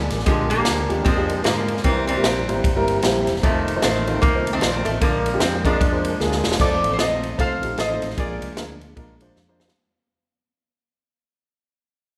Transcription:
Already playing: D3 G#3 A#3 D4 F4 G#4 A#4 D5 G#5
0.10 A1, snare, ride
0.19 snare
0.26 A#1 D3 F3 G#3 A#3 D4 F4 G4, kick, ride
0.50 D3 F3 A#3, ride
0.57 G#3 A#3 D4 F4 G4
0.65 D2, snare, ride
0.89 D#2 G#3 A#3 D4 F4 G4, ride
1.05 F2 A#2 F3 G#3 C4, kick, ride
1.17 G#3 A#3 D4 F4 G4
1.29 ride
1.44 G#2 D3 F3 G#3 A#3 D4 F4 A#4, snare, ride
1.68 ride
1.77 snare
1.84 C2 C3 E3 G3 A#3 C4 E4 G4 A#4 C5 E5 A#5, kick, ride
2.07 E3 G3 C4, ride
2.17 G3 A#3 C4 E4 A#4
2.24 A#1, snare, ride
2.48 G#1 G3 A#3 C4 E4 C5, ride
2.64 G1, kick, ride
2.76 G3 A#3 C4 E4 A#4
2.88 ride
3.02 A#1 G3 A#3 C4 E4 G4, snare, ride
3.27 E1, snare, ride
3.36 snare
3.43 F1 C3 D#3 A3 C4 D#4 F4 C5 D#5 A5, kick, ride
3.68 ride
3.76 A3 C4 D#4 F4 C5
3.82 A1 D#3 A3 C4, snare, ride
4.07 A3 C4 D#4 F4 C5, ride
4.22 C2 D#3 A#3, kick, ride
4.35 A3 C4 D#4 F4 C5
4.47 ride
4.53 D#3 A3 C4
4.61 A#1 A3 C4 D#4 F4 D5, snare, ride
4.85 A1 A3, ride
5.01 A#1 A#2 D3 F3 G#3 A#3 D4 F4 A#4 D5 G#5, kick, ride
5.26 ride
5.33 G#3 A#3 D4 F4 G4
5.40 F2 C4, snare, ride
5.65 F3 G#3 A#3 D4 F4 A#4, kick, ride
5.81 F2, kick, ride
5.92 G#3 A#3 D4 F4 C5
6.05 ride
6.20 D2 G#3 A#3 D4 F4 G#4, snare
6.32 snare
6.44 E1, snare
6.52 snare
6.59 F1 F3 A3 C4 D#4 F4 A4 C5 D5, kick, crash
6.84 A1, ride
6.93 C5
6.98 A#1 A3 C4 D#4 F4 A4 C5 D#5, snare, ride
7.23 ride
7.37 C2 A3 C4 D#4 F4 A4 C5 F5, kick, ride
7.62 A#1 A3 C4 D#4 F4 G4, ride
7.78 A1 A4 C5 D#5, snare, ride
7.89 A3 C4 D#4 F4 C5
8.02 A1, snare, ride
8.10 snare
8.17 A#1 A#2 G#3 A#3 D4 F4 G#4 A#4 D5, kick, ride
8.42 C2, ride
8.57 D2 G#3 A#3 D4 F4 A#4, snare, ride
8.81 ride
8.96 A#1 G#3 A#3 D4 F4 A#4, kick, ride
9.21 G#3 A#3 D4 F4 C5, ride
9.36 F2, snare
9.48 G#3 A#3 D4 F4 C5
9.60 snare
9.68 snare

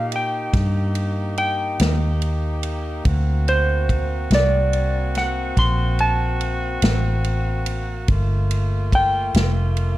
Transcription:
Already playing: A#2 A#3 D#4 G4 F5
0.12 ride
0.16 G5
0.53 G2, kick, snare, ride
0.95 ride
1.37 G5, ride
1.79 D#2, snare, ride
2.22 ride
2.63 ride
3.05 D2 C4 F#4, kick, ride
3.48 C5, ride
3.89 kick, ride
4.31 C2, snare, ride
4.35 D5
4.73 ride
5.15 F#5, snare, ride
5.57 A#1 C6, kick, snare, ride
5.99 A5, ride
6.41 ride
6.82 A1, snare, ride
7.24 ride
7.66 ride
8.08 G1 A3 A#3 F4, kick, ride
8.51 ride
8.92 G5, kick, ride
9.34 F1, snare, ride
9.77 ride

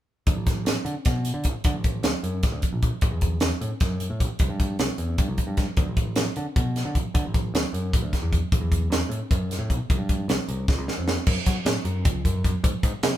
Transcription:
0.27 D2, kick, closed hi-hat
0.35 A1
0.47 kick, snare, closed hi-hat
0.65 A1, snare, closed hi-hat
0.85 D3, closed hi-hat
1.05 B2, kick, snare, closed hi-hat
1.25 closed hi-hat
1.34 D3
1.44 A1, kick, closed hi-hat
1.64 D3, kick, closed hi-hat
1.74 A1
1.84 kick, closed hi-hat
2.03 D2, snare, closed hi-hat
2.23 F#2, closed hi-hat
2.43 A1, kick, snare, closed hi-hat
2.52 D2
2.62 kick, closed hi-hat
2.72 A#1
2.82 kick, closed hi-hat
3.01 A1, kick, closed hi-hat
3.11 E2
3.21 kick, closed hi-hat
3.40 E2, snare, closed hi-hat
3.61 A2, closed hi-hat
3.80 F#2, kick, snare, closed hi-hat
4.00 closed hi-hat
4.10 A2
4.20 A1, kick, closed hi-hat
4.39 C2, kick, closed hi-hat
4.49 G2
4.60 kick, closed hi-hat
4.79 C2, snare, closed hi-hat
4.98 E2, closed hi-hat
5.18 G2, kick, closed hi-hat
5.28 C2
5.38 kick, closed hi-hat
5.47 G2
5.57 kick, snare, closed hi-hat
5.77 D2, kick, closed hi-hat
5.88 A1
5.97 kick, closed hi-hat
6.16 A1, snare, closed hi-hat
6.36 D3, closed hi-hat
6.56 B2, kick, closed hi-hat
6.76 snare, closed hi-hat
6.85 D3
6.95 A1, kick, closed hi-hat
7.14 D3, kick, closed hi-hat
7.25 A1
7.34 kick, closed hi-hat
7.54 D2, snare, closed hi-hat
7.73 F#2, closed hi-hat
7.93 A1, kick, closed hi-hat
8.03 D2
8.13 kick, snare, closed hi-hat
8.22 E2
8.33 kick, closed hi-hat
8.52 A1, kick, closed hi-hat
8.61 E2
8.72 kick, closed hi-hat
8.90 E2, snare, closed hi-hat
9.09 A2, closed hi-hat
9.31 F#2, kick, closed hi-hat
9.51 snare, closed hi-hat
9.59 A2
9.70 B1, kick, closed hi-hat
9.90 C2, kick, closed hi-hat
9.98 G2
10.09 kick, closed hi-hat
10.28 C2, snare, closed hi-hat
10.48 C2, closed hi-hat
10.68 C#2, kick, snare
10.78 C#2
10.88 snare
10.98 F2
11.08 snare
11.27 F#2, kick, crash
11.46 F#3, kick, snare, closed hi-hat
11.65 A2, snare, closed hi-hat
11.85 F#2, closed hi-hat
12.05 C#2, kick, closed hi-hat
12.25 F#2, kick, closed hi-hat
12.44 F#2, kick, closed hi-hat
12.63 G#2, kick, closed hi-hat
12.83 G#2, kick, closed hi-hat
13.03 C3, snare, closed hi-hat

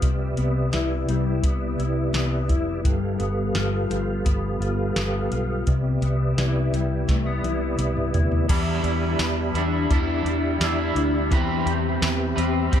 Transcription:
Already playing: B3 G4 B4
0.02 C2 C3 D5 E5, kick, closed hi-hat
0.37 C2 B3, closed hi-hat
0.72 C2 E4, snare, closed hi-hat
1.08 C2 G3, closed hi-hat
1.43 C2 B3, kick, closed hi-hat
1.78 C2 E4, closed hi-hat
2.13 C2 B3, snare, closed hi-hat
2.49 F1 E4, kick, closed hi-hat
2.84 G1 G2 G3 G4 A4 F5, kick, closed hi-hat
3.19 G1 B3, closed hi-hat
3.54 G1 F4, snare, closed hi-hat
3.90 G1 F3, closed hi-hat
4.25 G1 B3, kick, closed hi-hat
4.60 G1 F4, closed hi-hat
4.96 G1 B3, snare, closed hi-hat
5.31 B1 F4, closed hi-hat
5.67 C2 C3 B4 D5 E5, kick, closed hi-hat
6.02 C2 B3, closed hi-hat
6.38 C2 E4, snare, closed hi-hat
6.73 C2 G3, closed hi-hat
7.08 C2 A3, kick, snare, closed hi-hat
7.26 B3
7.43 C2 E4, closed hi-hat, high tom
7.79 C2 B3, closed hi-hat, mid tom
7.97 mid tom
8.14 D2 E4, closed hi-hat, floor tom
8.32 floor tom
8.49 E2 E3 G3 B3 D4 E4 G4 B4 D5 E5 B5, kick, closed hi-hat, crash
8.84 E2 E4, closed hi-hat
9.19 E2 B4, snare, closed hi-hat, tambourine
9.54 E2 G3 B3 D4 E4, closed hi-hat
9.89 E2 G3 B3 D4 E4, kick, closed hi-hat
10.24 E2 D4, closed hi-hat
10.60 E2 G3 B3 D4 E4, snare, closed hi-hat, tambourine
10.95 D2 D4, closed hi-hat
11.30 E2 E3 G3 C4 G4 B4, kick, closed hi-hat
11.65 E2 G4, closed hi-hat
12.01 E2 B4, snare, closed hi-hat, tambourine
12.36 E2 G3 C4 G4 B4, closed hi-hat
12.71 E2 G3 C4 G4 B4, kick, closed hi-hat

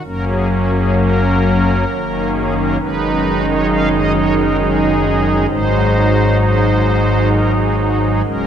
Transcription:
0.04 F#1 F#2 F#3 A#3 C#4 A#4
0.28 G#4
0.51 F#4
0.75 G#4
0.99 A#4
1.90 F#1 F#2 D#3 A#3 C#4
2.35 G#4
2.57 A#4
2.79 F#1 F#2 D#3 G#3 D#4 B4
3.48 C#5
3.69 F5
3.93 D#5
4.15 C#5
4.37 A#4
4.59 G#4
5.50 G#1 G#2 F#3 G#3 D#4 C5
6.40 C5
7.32 A#4
7.56 G#4
7.78 F#4
8.02 G#4
8.24 C#1 C#2 F#3 G#3 C#4 A#4

